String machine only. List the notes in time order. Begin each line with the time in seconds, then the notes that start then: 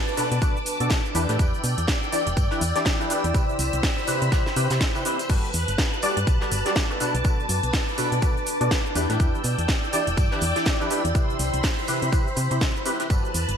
Already playing: B4 A5 D6
1.15 D5 G5 E6
3.34 C5 B5
5.29 B4 A5 F#6
7.00 B4 D6
8.95 D5 G5 E6
11.15 C5 B5
13.10 B4 A5 F#6